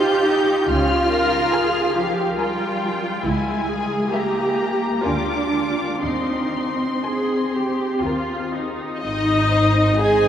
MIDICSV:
0, 0, Header, 1, 6, 480
1, 0, Start_track
1, 0, Key_signature, -4, "major"
1, 0, Tempo, 854701
1, 393, Time_signature, 3, 2, 24, 8
1, 1829, Tempo, 891530
1, 2789, Tempo, 996678
1, 4709, Tempo, 943396
1, 5348, End_track
2, 0, Start_track
2, 0, Title_t, "Violin section"
2, 0, Program_c, 0, 48
2, 0, Note_on_c, 0, 91, 74
2, 388, Note_off_c, 0, 91, 0
2, 390, Note_on_c, 0, 89, 77
2, 1092, Note_off_c, 0, 89, 0
2, 1105, Note_on_c, 0, 77, 55
2, 1339, Note_off_c, 0, 77, 0
2, 1341, Note_on_c, 0, 79, 62
2, 1816, Note_off_c, 0, 79, 0
2, 1822, Note_on_c, 0, 80, 64
2, 2293, Note_off_c, 0, 80, 0
2, 2294, Note_on_c, 0, 82, 56
2, 2788, Note_off_c, 0, 82, 0
2, 2788, Note_on_c, 0, 86, 58
2, 3265, Note_on_c, 0, 84, 50
2, 3269, Note_off_c, 0, 86, 0
2, 4453, Note_off_c, 0, 84, 0
2, 4708, Note_on_c, 0, 75, 59
2, 4936, Note_off_c, 0, 75, 0
2, 4947, Note_on_c, 0, 72, 51
2, 5184, Note_off_c, 0, 72, 0
2, 5190, Note_on_c, 0, 72, 65
2, 5348, Note_off_c, 0, 72, 0
2, 5348, End_track
3, 0, Start_track
3, 0, Title_t, "Violin section"
3, 0, Program_c, 1, 48
3, 0, Note_on_c, 1, 72, 59
3, 0, Note_on_c, 1, 80, 56
3, 270, Note_off_c, 1, 72, 0
3, 270, Note_off_c, 1, 80, 0
3, 864, Note_on_c, 1, 80, 57
3, 865, Note_on_c, 1, 70, 52
3, 1225, Note_off_c, 1, 70, 0
3, 1225, Note_off_c, 1, 80, 0
3, 1342, Note_on_c, 1, 70, 54
3, 1345, Note_on_c, 1, 80, 55
3, 1707, Note_off_c, 1, 70, 0
3, 1708, Note_off_c, 1, 80, 0
3, 2296, Note_on_c, 1, 70, 45
3, 2296, Note_on_c, 1, 76, 49
3, 2665, Note_off_c, 1, 70, 0
3, 2665, Note_off_c, 1, 76, 0
3, 2786, Note_on_c, 1, 70, 48
3, 2788, Note_on_c, 1, 80, 42
3, 3151, Note_off_c, 1, 70, 0
3, 3151, Note_off_c, 1, 80, 0
3, 3758, Note_on_c, 1, 68, 39
3, 3758, Note_on_c, 1, 80, 40
3, 4120, Note_off_c, 1, 68, 0
3, 4120, Note_off_c, 1, 80, 0
3, 4230, Note_on_c, 1, 79, 40
3, 4232, Note_on_c, 1, 70, 38
3, 4596, Note_off_c, 1, 79, 0
3, 4597, Note_off_c, 1, 70, 0
3, 4705, Note_on_c, 1, 75, 65
3, 5174, Note_off_c, 1, 75, 0
3, 5202, Note_on_c, 1, 80, 70
3, 5348, Note_off_c, 1, 80, 0
3, 5348, End_track
4, 0, Start_track
4, 0, Title_t, "Viola section"
4, 0, Program_c, 2, 48
4, 0, Note_on_c, 2, 65, 59
4, 145, Note_on_c, 2, 63, 56
4, 148, Note_off_c, 2, 65, 0
4, 386, Note_on_c, 2, 61, 51
4, 390, Note_off_c, 2, 63, 0
4, 624, Note_off_c, 2, 61, 0
4, 625, Note_on_c, 2, 70, 60
4, 859, Note_on_c, 2, 68, 62
4, 861, Note_off_c, 2, 70, 0
4, 1102, Note_off_c, 2, 68, 0
4, 1103, Note_on_c, 2, 67, 62
4, 1338, Note_on_c, 2, 65, 63
4, 1343, Note_off_c, 2, 67, 0
4, 1815, Note_off_c, 2, 65, 0
4, 1820, Note_on_c, 2, 64, 52
4, 2056, Note_on_c, 2, 68, 58
4, 2057, Note_off_c, 2, 64, 0
4, 2288, Note_on_c, 2, 67, 55
4, 2293, Note_off_c, 2, 68, 0
4, 2784, Note_on_c, 2, 65, 46
4, 2785, Note_off_c, 2, 67, 0
4, 3014, Note_off_c, 2, 65, 0
4, 3020, Note_on_c, 2, 65, 43
4, 3262, Note_off_c, 2, 65, 0
4, 3264, Note_on_c, 2, 63, 39
4, 3705, Note_off_c, 2, 63, 0
4, 3756, Note_on_c, 2, 68, 45
4, 3979, Note_off_c, 2, 68, 0
4, 3994, Note_on_c, 2, 67, 47
4, 4228, Note_on_c, 2, 65, 47
4, 4233, Note_off_c, 2, 67, 0
4, 4472, Note_off_c, 2, 65, 0
4, 4474, Note_on_c, 2, 63, 41
4, 4703, Note_off_c, 2, 63, 0
4, 4709, Note_on_c, 2, 63, 68
4, 5176, Note_off_c, 2, 63, 0
4, 5198, Note_on_c, 2, 68, 75
4, 5348, Note_off_c, 2, 68, 0
4, 5348, End_track
5, 0, Start_track
5, 0, Title_t, "Cello section"
5, 0, Program_c, 3, 48
5, 0, Note_on_c, 3, 67, 83
5, 383, Note_on_c, 3, 65, 87
5, 389, Note_off_c, 3, 67, 0
5, 1099, Note_on_c, 3, 53, 72
5, 1102, Note_off_c, 3, 65, 0
5, 1341, Note_off_c, 3, 53, 0
5, 1341, Note_on_c, 3, 55, 72
5, 1816, Note_off_c, 3, 55, 0
5, 1822, Note_on_c, 3, 56, 75
5, 2283, Note_off_c, 3, 56, 0
5, 2291, Note_on_c, 3, 58, 64
5, 2786, Note_off_c, 3, 58, 0
5, 2788, Note_on_c, 3, 62, 61
5, 3268, Note_on_c, 3, 60, 54
5, 3269, Note_off_c, 3, 62, 0
5, 4454, Note_off_c, 3, 60, 0
5, 4705, Note_on_c, 3, 44, 60
5, 5348, Note_off_c, 3, 44, 0
5, 5348, End_track
6, 0, Start_track
6, 0, Title_t, "Double bass section"
6, 0, Program_c, 4, 48
6, 386, Note_on_c, 4, 37, 69
6, 773, Note_off_c, 4, 37, 0
6, 1825, Note_on_c, 4, 37, 64
6, 2202, Note_off_c, 4, 37, 0
6, 2790, Note_on_c, 4, 38, 54
6, 3177, Note_off_c, 4, 38, 0
6, 3265, Note_on_c, 4, 39, 48
6, 3663, Note_off_c, 4, 39, 0
6, 4227, Note_on_c, 4, 39, 45
6, 4618, Note_off_c, 4, 39, 0
6, 4710, Note_on_c, 4, 32, 57
6, 5348, Note_off_c, 4, 32, 0
6, 5348, End_track
0, 0, End_of_file